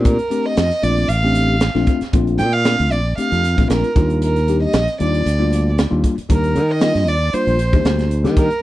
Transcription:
0.00 0.17 A#2 medium
0.00 0.17 A3 medium
0.00 0.17 C4 medium
0.00 0.17 D4 medium
0.00 0.17 G4 medium
0.05 0.47 A#4 medium
0.05 kick medium
0.05 closed hi-hat medium
0.19 closed hi-hat soft
0.30 0.63 A3 medium
0.30 0.63 C4 medium
0.30 0.63 D4 medium
0.30 0.63 G4 medium
0.30 closed hi-hat medium
0.46 0.85 D#5 medium
0.57 0.70 F2 medium
0.57 snare medium
0.57 closed hi-hat medium
0.71 closed hi-hat soft
0.82 1.07 A#1 medium
0.82 1.07 A3 medium
0.82 1.07 C4 medium
0.82 1.07 D4 medium
0.82 1.07 F4 medium
0.82 1.10 D5 medium
0.82 closed hi-hat medium
0.97 closed hi-hat soft
1.08 1.68 A1 medium
1.08 1.87 F5 medium
1.08 closed hi-hat medium
1.24 1.55 A3 medium
1.24 1.55 C4 medium
1.24 1.55 D4 medium
1.24 1.55 G4 medium
1.35 closed hi-hat medium
1.61 snare medium
1.61 closed hi-hat medium
1.75 1.86 A#1 medium
1.75 1.99 A3 medium
1.75 1.99 C4 medium
1.75 1.99 D4 medium
1.75 1.99 F4 medium
1.75 snare soft
1.87 kick medium
1.87 closed hi-hat medium
2.01 muted fingered electric bass stroke soft
2.01 snare soft
2.01 closed hi-hat soft
2.13 2.40 A#1 medium
2.13 2.46 A3 medium
2.13 2.46 C4 medium
2.13 2.46 D4 medium
2.13 2.46 F4 medium
2.13 kick loud
2.13 closed hi-hat medium
2.27 closed hi-hat soft
2.39 2.75 A#2 medium
2.39 2.54 G5 medium
2.39 closed hi-hat medium
2.53 2.93 F5 loud
2.65 2.98 A3 medium
2.65 2.98 C4 medium
2.65 2.98 D4 medium
2.65 2.98 F4 medium
2.65 snare medium
2.65 closed hi-hat medium
2.79 2.92 D2 medium
2.79 closed hi-hat soft
2.91 3.15 A#1 medium
2.91 3.17 D5 medium
2.91 closed hi-hat soft
3.17 3.41 A3 medium
3.17 3.42 C4 medium
3.17 3.42 D4 medium
3.17 3.42 G4 medium
3.17 3.66 F5 medium
3.17 muted fingered electric bass stroke soft
3.17 closed hi-hat medium
3.32 3.55 F2 medium
3.32 closed hi-hat soft
3.44 closed hi-hat medium
3.57 3.69 A#1 medium
3.57 3.88 A3 medium
3.57 3.89 C4 medium
3.57 3.89 D4 medium
3.57 3.89 F4 medium
3.57 kick medium
3.57 closed hi-hat soft
3.70 3.82 A#1 medium
3.70 4.07 A#4 medium
3.70 snare medium
3.70 closed hi-hat medium
3.84 closed hi-hat soft
3.95 4.65 D#2 medium
3.95 4.38 G3 medium
3.95 4.38 A#3 medium
3.95 4.38 D4 medium
3.95 4.38 F4 medium
3.95 kick medium
3.95 closed hi-hat medium
4.10 closed hi-hat soft
4.22 4.60 A#4 medium
4.22 closed hi-hat medium
4.36 closed hi-hat soft
4.48 4.80 G3 medium
4.48 4.80 A#3 medium
4.48 4.80 D4 medium
4.48 4.80 G4 medium
4.48 closed hi-hat medium
4.63 4.98 D#5 medium
4.73 4.86 A#1 medium
4.73 snare loud
4.73 closed hi-hat medium
4.88 closed hi-hat soft
5.00 5.23 D#2 medium
5.00 5.23 G3 medium
5.00 5.24 A#3 medium
5.00 5.24 D4 medium
5.00 5.24 F4 medium
5.00 5.74 D5 medium
5.00 closed hi-hat medium
5.14 closed hi-hat soft
5.26 5.85 D2 medium
5.26 closed hi-hat medium
5.39 5.70 G3 medium
5.39 5.70 A#3 medium
5.39 5.71 D4 medium
5.39 5.71 F4 medium
5.53 closed hi-hat medium
5.78 snare loud
5.78 closed hi-hat medium
5.90 6.02 D#2 medium
5.90 6.14 G3 medium
5.90 6.14 A#3 medium
5.90 6.15 D4 medium
5.90 6.15 F4 medium
6.04 kick medium
6.04 closed hi-hat medium
6.18 muted fingered electric bass stroke soft
6.18 closed hi-hat soft
6.29 6.57 D#2 medium
6.29 6.61 G3 medium
6.29 6.61 A#3 medium
6.29 6.61 D4 medium
6.29 6.62 G4 medium
6.29 6.73 A#4 medium
6.29 kick medium
6.29 closed hi-hat medium
6.44 closed hi-hat soft
6.55 6.91 D#3 medium
6.55 closed hi-hat medium
6.71 7.10 D#5 medium
6.71 7.11 D#5 medium
6.80 7.13 G3 medium
6.80 7.13 A#3 medium
6.80 7.13 D4 medium
6.80 7.14 F4 medium
6.80 snare loud
6.80 closed hi-hat medium
6.95 7.07 G2 medium
6.95 snare soft
6.95 closed hi-hat soft
7.07 7.31 D#2 medium
7.07 7.35 D5 medium
7.07 7.36 D5 medium
7.07 closed hi-hat medium
7.33 7.57 G3 medium
7.33 7.57 A#3 medium
7.33 7.57 D4 medium
7.33 7.58 F4 medium
7.33 8.11 C5 medium
7.33 8.12 C5 medium
7.33 muted fingered electric bass stroke soft
7.33 closed hi-hat medium
7.47 7.70 A#1 medium
7.47 closed hi-hat soft
7.59 closed hi-hat medium
7.72 7.84 D#2 medium
7.72 8.04 G3 medium
7.72 8.04 A#3 medium
7.72 8.04 D4 medium
7.72 8.04 G4 medium
7.72 kick medium
7.72 closed hi-hat soft
7.85 8.26 D2 medium
7.85 snare loud
7.85 closed hi-hat medium
7.99 snare soft
7.99 closed hi-hat soft
8.11 closed hi-hat medium
8.24 8.48 D#3 medium
8.24 8.48 G3 medium
8.24 8.48 A#3 medium
8.24 8.48 D4 medium
8.24 8.48 G4 medium
8.24 snare soft
8.24 closed hi-hat soft
8.37 8.62 A#4 medium
8.37 kick loud
8.37 closed hi-hat medium
8.51 closed hi-hat soft

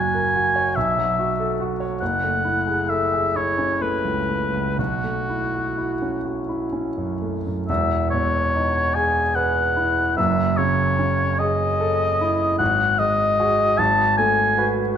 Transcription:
0.00 0.72 F#1 medium
0.00 0.78 F#3 soft
0.00 0.26 F#4 soft
0.00 0.77 G#5 medium
0.14 0.47 A#4 soft
0.35 0.68 F#4 soft
0.56 0.76 C#5 soft
0.76 1.98 B1 medium
0.76 1.59 E5 medium
0.98 1.31 F#3 soft
1.19 1.52 F#4 soft
1.40 1.72 A4 soft
1.60 1.93 F#4 soft
1.80 2.01 C#5 soft
2.01 4.75 F#1 medium
2.01 2.91 F#5 medium
2.24 2.58 A3 soft
2.45 2.80 E4 soft
2.67 3.03 G#4 soft
2.89 3.26 A4 soft
2.89 3.38 E5 medium
3.13 3.49 G#4 soft
3.35 3.72 E4 soft
3.35 3.83 C#5 medium
3.58 3.95 C#4 soft
3.81 4.19 A3 soft
3.81 4.79 B4 medium
4.05 4.43 C#2 soft
4.29 4.68 A3 soft
4.54 4.78 C#2 soft
4.78 7.65 B1 soft
4.78 6.23 F#4 medium
5.04 5.44 A3 soft
5.29 5.68 E4 soft
5.54 5.92 F#4 soft
5.78 6.16 E4 soft
6.02 6.40 C#4 soft
6.25 6.63 F#4 soft
6.49 6.88 E4 soft
6.73 7.12 C#4 soft
6.97 7.37 F#2 soft
7.22 7.60 A3 soft
7.46 7.69 F#2 soft
7.69 10.14 E1 medium
7.69 10.14 E2 medium
7.69 8.09 E5 medium
8.10 8.81 B2 soft
8.10 8.96 C#5 medium
8.55 9.21 D#4 soft
8.95 9.61 G#4 medium
8.95 9.37 G#5 medium
9.35 10.01 B4 soft
9.35 10.16 F#5 medium
9.76 10.17 E4 soft
10.17 12.56 F#1 medium
10.17 12.56 F#2 medium
10.17 10.59 E5 medium
10.57 11.24 C#3 soft
10.57 11.41 C#5 medium
10.99 11.64 C#4 soft
11.39 12.05 G#4 medium
11.39 12.58 D#5 medium
11.80 12.44 A4 medium
12.21 12.60 E4 soft
12.59 13.74 G#1 medium
12.59 13.00 F#5 medium
12.99 13.63 G#3 soft
12.99 13.80 D#5 loud
13.39 13.75 F#4 medium
13.39 13.75 G#4 medium
13.78 14.94 G#1 medium
13.78 14.17 A5 medium
14.18 14.82 A3 medium
14.18 14.69 G#5 medium
14.58 14.93 F#4 medium
14.58 14.93 B4 medium

